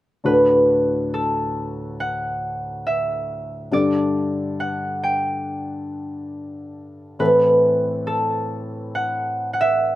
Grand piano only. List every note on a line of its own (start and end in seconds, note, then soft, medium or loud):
0.24 3.68 D2 soft
0.24 3.68 A2 soft
0.24 3.68 D4 soft
0.24 3.68 F#4 soft
0.24 3.69 A4 soft
3.71 7.16 G2 soft
3.71 7.16 D3 soft
3.71 7.16 D4 soft
3.71 7.16 G4 soft
3.71 7.16 A4 soft
7.19 9.95 A2 soft
7.19 9.95 E3 soft
7.19 9.95 C4 soft
7.19 9.95 E4 soft
7.19 9.95 A4 soft